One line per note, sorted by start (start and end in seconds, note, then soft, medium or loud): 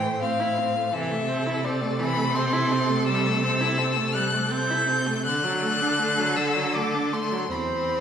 0.00 0.94 A2 medium
0.00 0.24 A3 medium
0.00 0.93 C5 medium
0.00 0.21 G5 loud
0.22 0.41 C4 medium
0.22 0.95 F5 loud
0.40 0.59 E4 medium
0.58 0.77 C4 medium
0.76 0.93 A3 medium
0.93 5.26 C3 medium
0.93 1.13 E3 medium
0.93 5.20 A4 medium
0.93 1.66 E5 loud
1.11 1.30 A3 medium
1.28 1.48 C4 medium
1.47 1.66 E4 medium
1.64 1.83 C4 medium
1.64 2.01 D5 loud
1.81 2.01 A3 medium
1.99 2.18 E3 medium
1.99 2.37 B5 loud
2.16 2.37 A3 medium
2.35 2.55 C4 medium
2.35 3.06 C6 loud
2.53 2.73 E4 medium
2.72 2.91 C4 medium
2.90 3.07 A3 medium
3.07 3.28 G3 medium
3.07 4.16 E6 loud
3.26 3.45 A3 medium
3.44 3.62 C4 medium
3.61 3.80 E4 medium
3.78 3.98 C4 medium
3.96 4.16 A3 medium
4.14 4.35 G3 medium
4.14 4.52 F#6 loud
4.34 4.53 A3 medium
4.51 4.72 C4 medium
4.51 5.24 G6 loud
4.70 4.90 E4 medium
4.88 5.08 C4 medium
5.07 5.25 A3 medium
5.25 7.50 D3 loud
5.25 5.45 D3 medium
5.25 7.47 A4 medium
5.25 6.38 F#6 loud
5.44 5.63 F#3 medium
5.62 5.83 A3 medium
5.81 6.01 D4 medium
5.99 6.20 A3 medium
6.18 6.38 F#3 medium
6.36 6.57 D3 medium
6.36 6.76 E6 loud
6.56 6.77 F#3 medium
6.75 6.96 A3 medium
6.75 7.14 D6 loud
6.94 7.15 D4 medium
7.13 7.33 A3 medium
7.13 7.52 C6 loud
7.31 7.50 F#3 medium
7.50 8.00 E2 medium
7.50 8.00 C4 medium
7.50 8.00 C5 medium
7.50 8.00 B5 medium